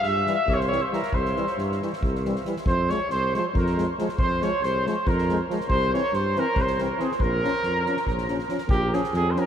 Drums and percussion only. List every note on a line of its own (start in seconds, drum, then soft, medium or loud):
0.03 snare soft
0.26 snare soft
0.48 kick medium
0.61 snare soft
0.72 snare soft
0.93 snare soft
1.03 snare soft
1.13 kick medium
1.25 snare soft
1.36 snare soft
1.47 snare soft
1.58 snare soft
1.72 snare soft
1.82 snare soft
1.93 snare soft
2.03 kick medium
2.15 snare soft
2.25 snare soft
2.36 snare soft
2.45 snare soft
2.56 snare soft
2.66 kick medium
2.89 snare soft
3.10 snare soft
3.34 snare soft
3.55 kick medium
3.66 snare soft
3.78 snare soft
3.98 snare soft
4.09 snare soft
4.18 kick medium
4.42 snare soft
4.63 snare soft
4.86 snare soft
5.07 kick medium
5.18 snare soft
5.29 snare soft
5.50 snare soft
5.60 snare soft
5.70 kick medium
5.94 snare soft
6.13 snare soft
6.36 snare soft
6.56 kick medium
6.67 snare soft
6.78 snare soft
6.99 snare soft
7.11 snare soft
7.20 kick medium
7.44 snare soft
7.54 snare soft
7.63 snare soft
7.86 snare soft
7.97 snare soft
8.07 kick medium
8.17 snare soft
8.28 snare soft
8.39 snare soft
8.49 snare soft
8.58 snare soft
8.69 kick loud
8.93 snare soft
9.04 snare soft
9.14 snare soft
9.36 snare soft